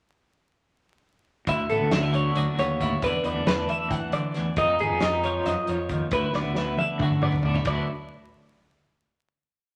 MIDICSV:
0, 0, Header, 1, 5, 480
1, 0, Start_track
1, 0, Tempo, 443131
1, 1596, Time_signature, 7, 3, 24, 8
1, 10562, End_track
2, 0, Start_track
2, 0, Title_t, "Clean electric guitar"
2, 0, Program_c, 0, 27
2, 1613, Note_on_c, 0, 76, 75
2, 1838, Note_on_c, 0, 69, 76
2, 1845, Note_off_c, 0, 76, 0
2, 2078, Note_off_c, 0, 69, 0
2, 2081, Note_on_c, 0, 76, 68
2, 2320, Note_off_c, 0, 76, 0
2, 2325, Note_on_c, 0, 73, 66
2, 2566, Note_off_c, 0, 73, 0
2, 2566, Note_on_c, 0, 74, 82
2, 2802, Note_off_c, 0, 74, 0
2, 2809, Note_on_c, 0, 73, 71
2, 3284, Note_off_c, 0, 73, 0
2, 3292, Note_on_c, 0, 71, 82
2, 3523, Note_off_c, 0, 71, 0
2, 3523, Note_on_c, 0, 74, 80
2, 3759, Note_off_c, 0, 74, 0
2, 3764, Note_on_c, 0, 71, 76
2, 4001, Note_off_c, 0, 71, 0
2, 4009, Note_on_c, 0, 76, 74
2, 4238, Note_off_c, 0, 76, 0
2, 4238, Note_on_c, 0, 78, 78
2, 4472, Note_off_c, 0, 78, 0
2, 4477, Note_on_c, 0, 74, 76
2, 4955, Note_off_c, 0, 74, 0
2, 4964, Note_on_c, 0, 75, 81
2, 5199, Note_off_c, 0, 75, 0
2, 5203, Note_on_c, 0, 68, 84
2, 5438, Note_off_c, 0, 68, 0
2, 5439, Note_on_c, 0, 75, 74
2, 5670, Note_off_c, 0, 75, 0
2, 5675, Note_on_c, 0, 73, 68
2, 5916, Note_off_c, 0, 73, 0
2, 5916, Note_on_c, 0, 75, 82
2, 6163, Note_off_c, 0, 75, 0
2, 6163, Note_on_c, 0, 73, 73
2, 6635, Note_off_c, 0, 73, 0
2, 6640, Note_on_c, 0, 71, 76
2, 6873, Note_off_c, 0, 71, 0
2, 6880, Note_on_c, 0, 74, 67
2, 7110, Note_off_c, 0, 74, 0
2, 7110, Note_on_c, 0, 71, 79
2, 7346, Note_off_c, 0, 71, 0
2, 7351, Note_on_c, 0, 76, 65
2, 7598, Note_off_c, 0, 76, 0
2, 7598, Note_on_c, 0, 78, 76
2, 7826, Note_off_c, 0, 78, 0
2, 7830, Note_on_c, 0, 74, 72
2, 8299, Note_off_c, 0, 74, 0
2, 8312, Note_on_c, 0, 74, 71
2, 8531, Note_off_c, 0, 74, 0
2, 10562, End_track
3, 0, Start_track
3, 0, Title_t, "Clean electric guitar"
3, 0, Program_c, 1, 27
3, 1603, Note_on_c, 1, 38, 65
3, 1610, Note_on_c, 1, 64, 61
3, 1847, Note_on_c, 1, 59, 55
3, 2075, Note_off_c, 1, 64, 0
3, 2079, Note_on_c, 1, 62, 60
3, 2200, Note_off_c, 1, 62, 0
3, 2200, Note_on_c, 1, 64, 47
3, 2308, Note_on_c, 1, 50, 55
3, 2563, Note_on_c, 1, 54, 56
3, 2811, Note_off_c, 1, 59, 0
3, 2815, Note_on_c, 1, 59, 54
3, 3040, Note_off_c, 1, 64, 0
3, 3047, Note_on_c, 1, 45, 57
3, 3056, Note_on_c, 1, 64, 58
3, 3258, Note_off_c, 1, 64, 0
3, 3282, Note_off_c, 1, 38, 0
3, 3283, Note_off_c, 1, 45, 0
3, 3287, Note_on_c, 1, 40, 67
3, 3291, Note_on_c, 1, 62, 71
3, 3535, Note_off_c, 1, 59, 0
3, 3539, Note_on_c, 1, 57, 47
3, 3741, Note_off_c, 1, 62, 0
3, 3754, Note_on_c, 1, 62, 58
3, 3991, Note_off_c, 1, 50, 0
3, 3996, Note_on_c, 1, 52, 53
3, 4470, Note_off_c, 1, 40, 0
3, 4474, Note_on_c, 1, 38, 56
3, 4715, Note_off_c, 1, 38, 0
3, 4726, Note_on_c, 1, 40, 62
3, 4925, Note_off_c, 1, 52, 0
3, 4946, Note_off_c, 1, 40, 0
3, 4950, Note_on_c, 1, 41, 70
3, 4953, Note_off_c, 1, 62, 0
3, 4958, Note_off_c, 1, 54, 0
3, 4961, Note_on_c, 1, 63, 65
3, 4966, Note_off_c, 1, 57, 0
3, 5211, Note_on_c, 1, 59, 52
3, 5436, Note_off_c, 1, 63, 0
3, 5448, Note_on_c, 1, 63, 57
3, 5691, Note_on_c, 1, 53, 60
3, 5909, Note_off_c, 1, 41, 0
3, 5923, Note_on_c, 1, 42, 61
3, 6156, Note_off_c, 1, 42, 0
3, 6161, Note_on_c, 1, 41, 57
3, 6395, Note_off_c, 1, 41, 0
3, 6406, Note_on_c, 1, 39, 55
3, 6607, Note_off_c, 1, 63, 0
3, 6609, Note_off_c, 1, 53, 0
3, 6637, Note_off_c, 1, 39, 0
3, 6643, Note_on_c, 1, 38, 65
3, 6654, Note_on_c, 1, 64, 63
3, 6876, Note_off_c, 1, 59, 0
3, 6880, Note_on_c, 1, 59, 51
3, 7112, Note_off_c, 1, 64, 0
3, 7125, Note_on_c, 1, 64, 59
3, 7370, Note_on_c, 1, 50, 53
3, 7608, Note_on_c, 1, 54, 55
3, 7831, Note_off_c, 1, 59, 0
3, 7842, Note_on_c, 1, 59, 59
3, 8071, Note_on_c, 1, 45, 60
3, 8073, Note_off_c, 1, 64, 0
3, 8077, Note_on_c, 1, 62, 43
3, 8184, Note_off_c, 1, 62, 0
3, 8184, Note_on_c, 1, 64, 42
3, 8276, Note_off_c, 1, 38, 0
3, 8284, Note_off_c, 1, 59, 0
3, 8287, Note_off_c, 1, 50, 0
3, 8289, Note_on_c, 1, 38, 55
3, 8298, Note_off_c, 1, 54, 0
3, 8300, Note_on_c, 1, 50, 59
3, 8304, Note_off_c, 1, 64, 0
3, 8308, Note_off_c, 1, 45, 0
3, 8311, Note_on_c, 1, 54, 52
3, 8318, Note_on_c, 1, 59, 57
3, 8322, Note_on_c, 1, 64, 54
3, 8512, Note_off_c, 1, 38, 0
3, 8517, Note_off_c, 1, 50, 0
3, 8523, Note_off_c, 1, 54, 0
3, 8526, Note_off_c, 1, 59, 0
3, 8529, Note_off_c, 1, 64, 0
3, 10562, End_track
4, 0, Start_track
4, 0, Title_t, "Fingered electric bass"
4, 0, Program_c, 2, 33
4, 1598, Note_on_c, 2, 38, 68
4, 1795, Note_off_c, 2, 38, 0
4, 1846, Note_on_c, 2, 33, 83
4, 1941, Note_off_c, 2, 33, 0
4, 1958, Note_on_c, 2, 38, 72
4, 2057, Note_off_c, 2, 38, 0
4, 2081, Note_on_c, 2, 38, 99
4, 2475, Note_off_c, 2, 38, 0
4, 2554, Note_on_c, 2, 38, 94
4, 2655, Note_off_c, 2, 38, 0
4, 2790, Note_on_c, 2, 39, 74
4, 3189, Note_off_c, 2, 39, 0
4, 3276, Note_on_c, 2, 40, 82
4, 3376, Note_off_c, 2, 40, 0
4, 3508, Note_on_c, 2, 40, 81
4, 3611, Note_off_c, 2, 40, 0
4, 3631, Note_on_c, 2, 40, 77
4, 3733, Note_off_c, 2, 40, 0
4, 3744, Note_on_c, 2, 40, 91
4, 3947, Note_off_c, 2, 40, 0
4, 4231, Note_on_c, 2, 52, 93
4, 4824, Note_off_c, 2, 52, 0
4, 4947, Note_on_c, 2, 41, 75
4, 5147, Note_off_c, 2, 41, 0
4, 5198, Note_on_c, 2, 32, 67
4, 5295, Note_off_c, 2, 32, 0
4, 5312, Note_on_c, 2, 41, 82
4, 5411, Note_off_c, 2, 41, 0
4, 5435, Note_on_c, 2, 41, 84
4, 5828, Note_off_c, 2, 41, 0
4, 5918, Note_on_c, 2, 41, 100
4, 6014, Note_off_c, 2, 41, 0
4, 6152, Note_on_c, 2, 41, 80
4, 6544, Note_off_c, 2, 41, 0
4, 6624, Note_on_c, 2, 38, 77
4, 6724, Note_off_c, 2, 38, 0
4, 6859, Note_on_c, 2, 38, 81
4, 6961, Note_off_c, 2, 38, 0
4, 6980, Note_on_c, 2, 38, 77
4, 7081, Note_off_c, 2, 38, 0
4, 7097, Note_on_c, 2, 38, 78
4, 7298, Note_off_c, 2, 38, 0
4, 7580, Note_on_c, 2, 50, 97
4, 8173, Note_off_c, 2, 50, 0
4, 8291, Note_on_c, 2, 38, 77
4, 8519, Note_off_c, 2, 38, 0
4, 10562, End_track
5, 0, Start_track
5, 0, Title_t, "Drums"
5, 1593, Note_on_c, 9, 42, 74
5, 1594, Note_on_c, 9, 36, 94
5, 1701, Note_off_c, 9, 42, 0
5, 1702, Note_off_c, 9, 36, 0
5, 1837, Note_on_c, 9, 42, 50
5, 1945, Note_off_c, 9, 42, 0
5, 2074, Note_on_c, 9, 42, 77
5, 2075, Note_on_c, 9, 38, 107
5, 2182, Note_off_c, 9, 42, 0
5, 2183, Note_off_c, 9, 38, 0
5, 2315, Note_on_c, 9, 42, 51
5, 2424, Note_off_c, 9, 42, 0
5, 2551, Note_on_c, 9, 42, 69
5, 2659, Note_off_c, 9, 42, 0
5, 2801, Note_on_c, 9, 42, 60
5, 2909, Note_off_c, 9, 42, 0
5, 3038, Note_on_c, 9, 36, 70
5, 3042, Note_on_c, 9, 42, 58
5, 3146, Note_off_c, 9, 36, 0
5, 3150, Note_off_c, 9, 42, 0
5, 3273, Note_on_c, 9, 42, 78
5, 3275, Note_on_c, 9, 36, 91
5, 3381, Note_off_c, 9, 42, 0
5, 3384, Note_off_c, 9, 36, 0
5, 3512, Note_on_c, 9, 42, 54
5, 3620, Note_off_c, 9, 42, 0
5, 3758, Note_on_c, 9, 42, 74
5, 3759, Note_on_c, 9, 38, 100
5, 3866, Note_off_c, 9, 42, 0
5, 3867, Note_off_c, 9, 38, 0
5, 3995, Note_on_c, 9, 42, 48
5, 4103, Note_off_c, 9, 42, 0
5, 4232, Note_on_c, 9, 36, 84
5, 4234, Note_on_c, 9, 42, 66
5, 4340, Note_off_c, 9, 36, 0
5, 4342, Note_off_c, 9, 42, 0
5, 4466, Note_on_c, 9, 42, 61
5, 4574, Note_off_c, 9, 42, 0
5, 4705, Note_on_c, 9, 42, 52
5, 4706, Note_on_c, 9, 38, 31
5, 4813, Note_off_c, 9, 42, 0
5, 4814, Note_off_c, 9, 38, 0
5, 4943, Note_on_c, 9, 42, 73
5, 4947, Note_on_c, 9, 36, 103
5, 5051, Note_off_c, 9, 42, 0
5, 5056, Note_off_c, 9, 36, 0
5, 5187, Note_on_c, 9, 42, 45
5, 5295, Note_off_c, 9, 42, 0
5, 5421, Note_on_c, 9, 42, 72
5, 5422, Note_on_c, 9, 38, 105
5, 5529, Note_off_c, 9, 42, 0
5, 5530, Note_off_c, 9, 38, 0
5, 5671, Note_on_c, 9, 42, 51
5, 5779, Note_off_c, 9, 42, 0
5, 5911, Note_on_c, 9, 42, 69
5, 5912, Note_on_c, 9, 38, 26
5, 6019, Note_off_c, 9, 42, 0
5, 6020, Note_off_c, 9, 38, 0
5, 6146, Note_on_c, 9, 42, 54
5, 6254, Note_off_c, 9, 42, 0
5, 6382, Note_on_c, 9, 42, 57
5, 6386, Note_on_c, 9, 36, 72
5, 6491, Note_off_c, 9, 42, 0
5, 6494, Note_off_c, 9, 36, 0
5, 6617, Note_on_c, 9, 42, 70
5, 6624, Note_on_c, 9, 36, 96
5, 6726, Note_off_c, 9, 42, 0
5, 6732, Note_off_c, 9, 36, 0
5, 6857, Note_on_c, 9, 38, 45
5, 6965, Note_off_c, 9, 38, 0
5, 7096, Note_on_c, 9, 38, 57
5, 7204, Note_off_c, 9, 38, 0
5, 7337, Note_on_c, 9, 48, 55
5, 7446, Note_off_c, 9, 48, 0
5, 7575, Note_on_c, 9, 47, 71
5, 7581, Note_on_c, 9, 36, 84
5, 7683, Note_off_c, 9, 47, 0
5, 7689, Note_off_c, 9, 36, 0
5, 7695, Note_on_c, 9, 45, 63
5, 7803, Note_off_c, 9, 45, 0
5, 7818, Note_on_c, 9, 45, 75
5, 7926, Note_off_c, 9, 45, 0
5, 7933, Note_on_c, 9, 43, 70
5, 8041, Note_off_c, 9, 43, 0
5, 8048, Note_on_c, 9, 43, 80
5, 8156, Note_off_c, 9, 43, 0
5, 8173, Note_on_c, 9, 43, 72
5, 8281, Note_off_c, 9, 43, 0
5, 8286, Note_on_c, 9, 53, 66
5, 8294, Note_on_c, 9, 36, 90
5, 8394, Note_off_c, 9, 53, 0
5, 8402, Note_off_c, 9, 36, 0
5, 10562, End_track
0, 0, End_of_file